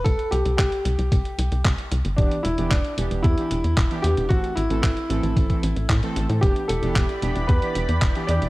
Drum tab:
HH |xxxxxxxxxxxxxxxx|xxxxxxxxxxxxxxxx|xxxxxxxxxxxxxxxx|xxxxxxxxxxxxxxxx|
CP |----x-------x---|----x-------x---|----x-------x---|----x-------x---|
BD |o---o---o---o---|o---o---o---o---|o---o---oo--o---|o---o---o---o---|